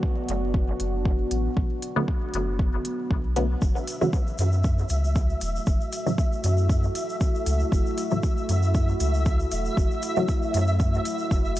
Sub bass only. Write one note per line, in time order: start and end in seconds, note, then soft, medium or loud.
0.28 0.73 F#1 medium
0.80 1.25 F#1 medium
1.31 1.49 A1 medium
1.57 1.66 B1 loud
2.34 2.78 F#1 medium
3.11 3.55 B1 medium
3.62 3.71 F#1 medium
4.39 4.83 F#2 medium
4.90 5.35 C#2 medium
5.41 5.59 E1 medium
5.67 5.76 F#1 loud
6.44 6.89 F#2 medium
7.46 7.64 C#2 medium
7.72 7.81 F#1 loud
8.49 8.94 F#2 medium
9.00 9.45 C#2 medium
9.52 9.69 E1 medium
9.77 9.86 F#1 loud
10.54 10.99 F#2 medium
11.31 11.60 F#1 medium